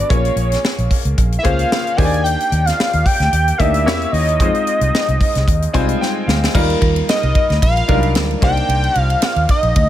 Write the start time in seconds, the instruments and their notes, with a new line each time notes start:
Already playing: grand piano B3 D4 F#4 A4 D5, analog synth lead D5
0.09 fingered electric bass A#1, grand piano A#3 C#4 F4 G#4 C#5, analog synth lead C#5, kick, closed hi-hat
0.25 closed hi-hat
0.36 fingered electric bass A#1, closed hi-hat
0.52 snare, closed hi-hat
0.65 snare
0.78 fingered electric bass A#1, closed hi-hat
0.91 kick, open hi-hat
1.05 fingered electric bass C#2, closed hi-hat
1.18 fingered electric bass A#1, kick, closed hi-hat
1.32 closed hi-hat
1.39 analog synth lead E5
1.43 fingered electric bass C#2, grand piano A#3 C#4 F4 G#4 C5, analog synth lead F5, kick, closed hi-hat
1.59 closed hi-hat
1.72 snare
1.87 closed hi-hat
1.97 fingered electric bass D#2, grand piano A#3 D4 D#4 G4 C5, analog synth lead G#5, kick, open hi-hat
2.05 grand piano D5
2.14 closed hi-hat
2.24 analog synth lead G5, closed hi-hat
2.40 closed hi-hat
2.52 fingered electric bass D#2, closed hi-hat
2.65 analog synth lead F5, snare, closed hi-hat
2.80 snare
2.93 fingered electric bass D#2, closed hi-hat
3.05 analog synth lead G5, kick, open hi-hat
3.20 fingered electric bass D2, snare, closed hi-hat
3.33 fingered electric bass D#2, closed hi-hat
3.48 closed hi-hat
3.58 fingered electric bass D2, grand piano A#3 D4 D#4 G4 D#5, analog synth lead E5, kick, closed hi-hat
3.74 closed hi-hat
3.86 fingered electric bass E2, grand piano A#3 C#4 E4 G4 C#5, snare
4.02 closed hi-hat
4.12 fingered electric bass D#2, analog synth lead D#5, open hi-hat
4.29 closed hi-hat
4.40 fingered electric bass F2, grand piano G#3 C4 D#4 F4 C5, kick, closed hi-hat
4.55 closed hi-hat
4.67 closed hi-hat
4.81 fingered electric bass C2, closed hi-hat
4.95 snare
5.08 fingered electric bass C2, closed hi-hat
5.21 kick, open hi-hat
5.35 fingered electric bass C2, snare, closed hi-hat
5.48 fingered electric bass D#2, kick, closed hi-hat
5.62 closed hi-hat
5.73 fingered electric bass C2, grand piano G3 C4 D#4 F4 C5 G#5, kick, closed hi-hat
5.80 grand piano G#3
5.89 closed hi-hat
6.01 grand piano G5, snare
6.27 fingered electric bass D2, grand piano F5, snare
6.44 snare
6.54 fingered electric bass D#2, grand piano G3 A#3 D#4 F4 A#4, kick, crash
6.70 ride
6.82 fingered electric bass D#2, kick, ride
6.96 ride
7.09 analog synth lead D#5, snare, ride
7.23 fingered electric bass C2, ride
7.35 kick, ride
7.50 fingered electric bass D2, snare, ride
7.62 fingered electric bass A#1, analog synth lead F5, kick, ride
7.77 ride
7.88 fingered electric bass C2, grand piano F#3 D4 D#4 F4 A#4, kick, ride
7.94 grand piano G3
8.03 ride
8.15 fingered electric bass D2, snare, ride
8.31 ride
8.41 fingered electric bass C2, grand piano A#3 D4 D#4 G4 C5, analog synth lead G5, kick, ride
8.57 ride
8.68 fingered electric bass C2, ride
8.84 ride
8.95 fingered electric bass C2, analog synth lead F5, ride
9.10 ride
9.22 analog synth lead F5, snare, ride
9.36 fingered electric bass D#2, ride
9.49 analog synth lead D#5, kick, ride
9.63 fingered electric bass A#1, ride
9.76 fingered electric bass D2, kick, ride